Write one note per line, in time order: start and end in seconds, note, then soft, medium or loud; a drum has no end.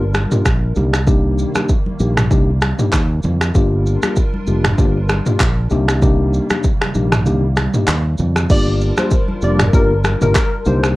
0.00 0.25 G1 loud
0.00 3.51 G3 medium
0.00 0.74 D4 medium
0.00 0.74 F4 medium
0.00 0.74 A#4 medium
0.14 finger snap medium
0.14 cross-stick medium
0.14 high conga medium
0.14 shaker medium
0.31 0.47 A#3 medium
0.31 0.47 D4 medium
0.31 0.47 F4 medium
0.31 0.47 G4 medium
0.31 mid tom loud
0.31 shaker medium
0.46 0.72 A#1 medium
0.46 finger snap medium
0.46 kick loud
0.46 cross-stick medium
0.46 shaker medium
0.76 1.44 C2 medium
0.76 3.52 C3 medium
0.76 3.52 D#3 medium
0.76 0.95 A#3 medium
0.76 3.52 A#3 medium
0.76 0.95 D4 medium
0.76 0.95 D#4 medium
0.76 0.95 G4 medium
0.76 high conga medium
0.76 low conga medium
0.76 shaker soft
0.93 finger snap medium
0.93 cross-stick medium
0.93 shaker medium
1.07 1.51 A#3 medium
1.07 1.51 D4 medium
1.07 1.51 D#4 medium
1.07 1.51 G4 loud
1.07 kick loud
1.07 shaker medium
1.39 shaker medium
1.55 1.71 A#3 medium
1.55 1.71 D4 medium
1.55 1.71 D#4 medium
1.55 1.71 G4 medium
1.55 finger snap medium
1.55 cross-stick medium
1.55 high conga medium
1.55 shaker medium
1.69 kick medium
1.69 shaker medium
1.86 high conga medium
2.00 2.31 A#1 loud
2.00 2.18 A#3 medium
2.00 2.18 D4 medium
2.00 2.19 D#4 medium
2.00 2.19 G4 medium
2.00 high conga medium
2.00 shaker medium
2.17 finger snap medium
2.17 cross-stick loud
2.17 mid tom medium
2.17 shaker medium
2.31 2.72 C2 loud
2.31 2.49 A#3 medium
2.31 2.49 D4 medium
2.31 2.50 D#4 medium
2.31 2.50 G4 loud
2.31 kick loud
2.31 low conga medium
2.31 shaker medium
2.62 finger snap medium
2.62 cross-stick loud
2.62 high conga medium
2.62 shaker medium
2.79 2.94 A#3 medium
2.79 2.95 D4 medium
2.79 2.95 D#4 medium
2.79 2.95 G4 medium
2.79 mid tom medium
2.79 shaker medium
2.93 3.19 D#2 loud
2.93 finger snap medium
2.93 kick medium
2.93 cross-stick medium
2.93 clap medium
2.93 shaker medium
3.23 3.50 F2 medium
3.23 high conga medium
3.23 low conga medium
3.23 shaker soft
3.41 finger snap medium
3.41 cross-stick medium
3.41 shaker medium
3.54 3.96 G1 loud
3.54 5.69 G3 medium
3.54 3.99 A#3 medium
3.54 3.99 D4 medium
3.54 5.69 D4 medium
3.54 3.99 F4 medium
3.54 5.69 F4 medium
3.54 3.99 G4 loud
3.54 5.69 A#4 medium
3.54 kick loud
3.54 shaker medium
3.86 shaker medium
4.02 4.18 A#3 medium
4.02 4.18 D4 medium
4.02 4.18 F4 medium
4.02 4.19 G4 medium
4.02 finger snap medium
4.02 cross-stick medium
4.02 high conga medium
4.02 shaker medium
4.16 kick medium
4.16 shaker medium
4.34 high conga medium
4.47 4.74 F1 medium
4.47 4.66 A#3 medium
4.47 4.66 D4 medium
4.47 4.66 F4 medium
4.47 4.66 G4 medium
4.47 high conga medium
4.47 shaker medium
4.64 finger snap medium
4.64 cross-stick loud
4.64 mid tom loud
4.64 shaker medium
4.78 5.19 G1 loud
4.78 4.97 A#3 medium
4.78 4.97 D4 medium
4.78 4.97 F4 medium
4.78 4.97 G4 loud
4.78 kick loud
4.78 low conga medium
4.78 shaker medium
5.09 finger snap medium
5.09 cross-stick loud
5.09 high conga medium
5.09 shaker medium
5.26 5.42 A#3 medium
5.26 5.42 D4 medium
5.26 5.42 F4 medium
5.26 5.42 G4 medium
5.26 mid tom medium
5.26 shaker medium
5.40 5.67 A#1 loud
5.40 finger snap medium
5.40 kick loud
5.40 cross-stick medium
5.40 clap medium
5.40 shaker medium
5.70 6.39 C2 loud
5.70 8.47 C3 medium
5.70 8.47 D#3 medium
5.70 8.47 G3 medium
5.70 6.00 A#3 loud
5.70 8.47 A#3 medium
5.70 6.00 D4 medium
5.70 6.00 D#4 medium
5.70 6.00 G4 loud
5.70 high conga medium
5.70 low conga medium
5.70 shaker soft
5.88 finger snap medium
5.88 cross-stick medium
5.88 shaker medium
6.02 6.46 A#3 medium
6.02 6.46 D4 medium
6.02 6.46 D#4 medium
6.02 6.46 G4 loud
6.02 kick loud
6.02 low conga medium
6.02 shaker medium
6.34 shaker medium
6.50 6.66 A#3 medium
6.50 6.66 D4 medium
6.50 6.66 D#4 medium
6.50 6.66 G4 medium
6.50 finger snap medium
6.50 cross-stick medium
6.50 high conga medium
6.50 shaker medium
6.64 kick medium
6.64 shaker medium
6.81 finger snap medium
6.81 cross-stick medium
6.81 high conga medium
6.94 7.26 A#1 loud
6.94 7.13 A#3 medium
6.94 7.13 D4 medium
6.94 7.13 D#4 medium
6.94 7.14 G4 medium
6.94 high conga medium
6.94 shaker medium
7.12 finger snap medium
7.12 cross-stick loud
7.12 mid tom loud
7.12 shaker medium
7.26 7.67 C2 loud
7.26 7.44 A#3 medium
7.26 7.44 D4 medium
7.26 7.44 D#4 medium
7.26 7.45 G4 loud
7.26 low conga medium
7.26 shaker medium
7.57 finger snap medium
7.57 cross-stick medium
7.57 high conga medium
7.57 shaker medium
7.74 7.89 A#3 medium
7.74 7.89 D4 medium
7.74 7.90 D#4 medium
7.74 7.90 G4 medium
7.74 mid tom loud
7.74 shaker medium
7.88 8.14 D#2 loud
7.88 finger snap medium
7.88 cross-stick medium
7.88 clap medium
7.88 shaker medium
8.18 8.45 F2 medium
8.18 high conga medium
8.18 low conga medium
8.18 shaker soft
8.36 finger snap medium
8.36 cross-stick medium
8.36 shaker medium
8.50 8.91 G1 loud
8.50 10.64 G3 medium
8.50 8.94 A#3 medium
8.50 8.94 D4 medium
8.50 10.64 D4 medium
8.50 10.64 F4 medium
8.50 8.94 F4 medium
8.50 8.94 G4 loud
8.50 10.64 A#4 medium
8.50 8.65 D5 loud
8.50 kick loud
8.50 crash medium
8.50 shaker medium
8.81 shaker medium
8.97 9.13 A#3 medium
8.97 9.13 D4 medium
8.97 9.13 F4 medium
8.97 9.14 G4 medium
8.97 9.10 C5 medium
8.97 finger snap medium
8.97 cross-stick medium
8.97 high conga medium
8.97 shaker medium
9.11 kick medium
9.11 shaker medium
9.29 high conga medium
9.42 9.69 F1 medium
9.42 9.61 A#3 medium
9.42 9.61 D4 medium
9.42 9.61 F4 medium
9.42 9.61 G4 medium
9.42 9.58 D5 medium
9.42 high conga medium
9.42 shaker medium
9.59 finger snap medium
9.59 cross-stick loud
9.59 mid tom medium
9.59 shaker medium
9.73 10.14 G1 loud
9.73 9.92 A#3 medium
9.73 9.92 D4 medium
9.73 9.92 F4 medium
9.73 9.92 G4 loud
9.73 9.89 A#4 medium
9.73 kick loud
9.73 low conga medium
9.73 shaker medium
10.04 finger snap medium
10.04 cross-stick medium
10.04 high conga medium
10.04 shaker medium
10.21 10.33 G1 medium
10.21 10.37 A#3 medium
10.21 10.37 D4 medium
10.21 10.37 F4 medium
10.21 10.37 G4 medium
10.21 10.34 A#4 medium
10.21 mid tom loud
10.21 shaker medium
10.35 10.50 A#4 medium
10.35 finger snap medium
10.35 kick loud
10.35 cross-stick medium
10.35 clap medium
10.35 shaker medium
10.65 10.96 C2 loud
10.65 10.96 C3 medium
10.65 10.96 D#3 medium
10.65 10.96 G3 medium
10.65 10.95 A#3 medium
10.65 10.96 A#3 medium
10.65 10.95 D4 medium
10.65 10.95 D#4 medium
10.65 10.95 G4 loud
10.65 10.81 C5 medium
10.65 high conga medium
10.65 low conga medium
10.65 shaker soft
10.83 finger snap medium
10.83 cross-stick medium
10.83 shaker medium